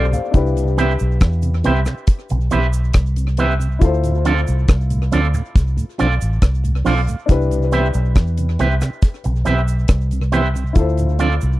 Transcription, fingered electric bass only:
0.00 0.12 B1 medium
0.35 0.96 C2 loud
1.01 1.20 B1 loud
1.22 1.61 E2 loud
1.66 1.86 C2 loud
2.31 2.50 B1 loud
2.53 2.92 B1 medium
2.95 3.78 C2 loud
3.82 4.44 D2 loud
4.49 4.68 C2 medium
4.69 5.09 C2 loud
5.14 5.33 D2 medium
5.56 5.76 C2 medium
6.01 6.20 B1 medium
6.22 6.41 A1 medium
6.43 6.83 C2 medium
6.86 7.06 B1 medium
7.30 7.91 C2 loud
7.95 8.14 B1 loud
8.16 8.56 E2 medium
8.60 8.80 C2 medium
9.26 9.45 B1 medium
9.47 9.87 B1 medium
9.89 10.72 C2 loud
10.76 11.38 D2 loud
11.43 11.60 C2 medium

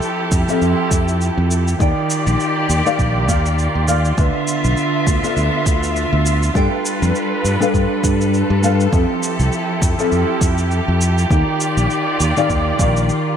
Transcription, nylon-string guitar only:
0.00 0.44 F3 medium
0.00 0.44 C4 medium
0.00 0.45 G4 medium
0.00 0.45 A4 medium
0.00 0.45 E5 medium
0.47 1.77 F3 medium
0.47 1.77 C4 medium
0.47 1.77 G4 medium
0.47 1.78 A4 medium
0.47 1.78 E5 medium
1.79 2.81 D#3 medium
1.79 2.82 D#4 medium
1.79 2.82 G4 medium
1.79 2.83 D5 medium
1.79 2.83 G5 medium
2.85 3.26 D#3 medium
2.85 3.26 D#4 medium
2.85 3.26 G4 medium
2.85 3.26 D5 medium
2.85 3.26 F5 loud
3.28 3.85 D#3 medium
3.28 3.85 D#4 medium
3.28 3.85 G4 medium
3.28 3.85 D5 medium
3.28 3.85 F5 medium
3.87 4.14 D#3 medium
3.87 4.14 D#4 medium
3.87 4.15 G4 medium
3.87 4.15 D5 medium
3.87 4.15 F5 medium
4.16 5.19 D3 medium
4.16 5.19 D4 medium
4.16 5.20 F4 medium
4.16 5.20 B4 medium
4.16 5.21 E5 medium
5.22 6.52 D3 medium
5.22 6.52 D4 medium
5.22 6.52 F4 medium
5.22 6.53 E5 medium
6.54 7.57 G3 medium
6.54 7.57 D4 medium
6.54 7.57 A4 medium
6.54 7.58 G5 medium
7.60 8.59 G3 medium
7.60 8.60 D4 medium
7.60 8.60 A4 medium
7.60 8.61 B4 medium
7.60 8.61 F5 medium
8.62 8.90 G3 medium
8.62 8.90 D4 medium
8.62 8.90 A4 medium
8.62 8.90 B4 medium
8.62 8.90 F5 medium
8.92 9.94 F3 medium
8.92 9.95 C4 medium
8.92 9.95 G4 medium
8.92 9.95 A4 medium
8.92 9.96 E5 medium
9.98 11.27 F3 medium
9.98 11.27 C4 medium
9.98 11.28 G4 medium
9.98 11.28 A4 medium
9.98 11.28 E5 medium
11.29 12.32 D#3 medium
11.29 12.32 D#4 medium
11.29 12.33 G4 medium
11.29 12.34 G5 medium
12.37 12.77 D#3 medium
12.37 12.77 D#4 medium
12.37 12.77 G4 medium
12.37 12.77 D5 medium
12.37 12.77 F5 medium
12.79 13.35 D#3 medium
12.79 13.36 D#4 medium
12.79 13.36 G4 medium
12.79 13.36 D5 medium
12.79 13.36 F5 medium

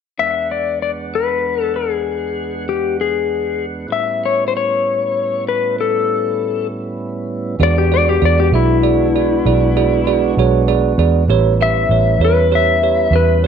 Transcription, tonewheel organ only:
0.18 3.87 E2 soft
0.18 3.87 G#3 soft
0.18 3.87 B3 soft
0.18 3.86 D4 soft
0.18 3.87 F#5 soft
3.88 7.56 A2 medium
3.88 7.56 G3 soft
3.88 7.56 B3 soft
3.88 7.56 C#4 soft
3.88 7.56 E4 soft
7.59 11.25 G#3 medium
7.59 11.25 B3 medium
7.59 11.25 D4 medium
7.59 11.25 F#4 medium
11.28 13.47 G3 medium
11.28 13.47 B3 medium
11.28 13.47 C#4 medium
11.28 13.47 E4 medium

